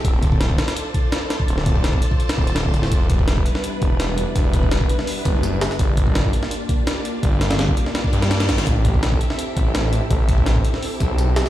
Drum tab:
HH |x-x-x-xxx-x-x-x-|x-x-x-x-xx-xx-x-|x-x-x-x-x-x-x-x-|x-x-x-x-o-x-x-x-|
SD |----o-oo----o-o-|-o--o----o--o--o|----o--o----o---|----o--o------oo|
BD |o-oo-o----o----o|--oo-o-o--o--o--|o-oo-o----o-----|o-oo-o----o-----|

HH |x-x-x-x-x-x-x-x-|x-xxx-x-x-xxxxxx|x-x-x-x-x-x-x-x-|x-x-x-x-o-x-x-x-|
SD |----o--o----o---|--ooo--oo--ooooo|----o--o----o---|----o--o------oo|
BD |o-oo-o----o-----|o----o---o------|o-oo-o----o-----|o-oo-o----o-----|